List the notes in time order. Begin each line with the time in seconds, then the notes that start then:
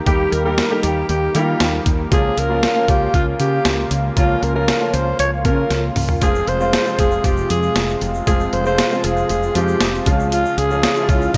Already playing: D#3 G3 A#3 D#4 G4
0.06 D#2 G3 A#3 D#4 G4, kick, closed hi-hat
0.32 D#2 A#4, closed hi-hat
0.45 G3 A#3 D#4 G4 A#4
0.58 snare, closed hi-hat
0.70 G3 A#3 D#4 G4
0.83 D#2 G4, closed hi-hat
1.09 D#2 G4, closed hi-hat
1.34 D#3 G3 A#3 D#4 F4 G4, closed hi-hat
1.60 D#2, snare, closed hi-hat
1.86 D#2, kick, closed hi-hat
2.11 C#2 C#3 F3 A#3 C#4 F4 G#4, kick, closed hi-hat
2.37 C#2 A#4, closed hi-hat
2.49 F3 A#3 C#4 F4
2.63 snare, closed hi-hat
2.75 F3 A#3 C#4 F4
2.88 C#2 G4, kick, closed hi-hat
3.14 C#2 F4, kick, closed hi-hat
3.40 C#3 G4, closed hi-hat
3.65 C#2, snare, closed hi-hat
3.91 C#2, closed hi-hat
4.16 C#2 F3 A#3 C#4 F4, kick, closed hi-hat
4.42 C#2 A#4, closed hi-hat
4.54 F3 A#3 C#4 F4 A#4
4.68 snare, closed hi-hat
4.80 F3 A#3 C#4 F4
4.94 C#2 C5, closed hi-hat
5.19 C#2 C#5, closed hi-hat
5.44 C#3 F3 A#3 C#4 F4 A#4, kick, closed hi-hat
5.70 C#2, snare, closed hi-hat
5.96 C#2, mid tom, open hi-hat
6.09 floor tom
6.21 F1 C3 F3 G#3 C4 F4 G#4, kick, closed hi-hat, shaker
6.35 shaker
6.47 F1 C5, closed hi-hat
6.60 F3 G#3 C4 F4, shaker
6.73 snare, closed hi-hat, shaker
6.85 F3 G#3 C4 F4, shaker
6.99 F1 G#4, kick, closed hi-hat, shaker
7.12 shaker
7.24 F1 G4, kick, closed hi-hat, shaker
7.37 shaker
7.50 F2 G#4, closed hi-hat, shaker
7.63 shaker
7.76 F1, snare, closed hi-hat, shaker
7.89 shaker
8.01 F1, closed hi-hat, shaker
8.14 shaker
8.26 F1 F3 G#3 C4 F4 G#4, kick, closed hi-hat, shaker
8.40 shaker
8.53 F1 C5, closed hi-hat
8.65 F3 G#3 C4 F4 C5, shaker
8.78 snare, closed hi-hat, shaker
8.91 F3 G#3 C4 F4, shaker
9.04 F1 G#4, closed hi-hat, shaker
9.17 shaker
9.29 F1 G#4, closed hi-hat, shaker
9.43 shaker
9.55 F2 F3 G#3 C4 F4 G4, closed hi-hat, shaker
9.68 shaker
9.81 F1, snare, closed hi-hat, shaker
9.94 shaker
10.06 C#2 C#3 F3 G#3 C#4 F4, kick, closed hi-hat, shaker
10.20 shaker
10.32 F4, closed hi-hat, shaker
10.45 shaker
10.58 C#2 G#4, closed hi-hat
10.70 F3 G#3 C#4 F4, shaker
10.83 snare, closed hi-hat, shaker
10.95 F3 G#3 C#4 E4, shaker
11.03 F4
11.09 C#2 F4, kick, closed hi-hat, shaker
11.22 shaker
11.34 C#2, kick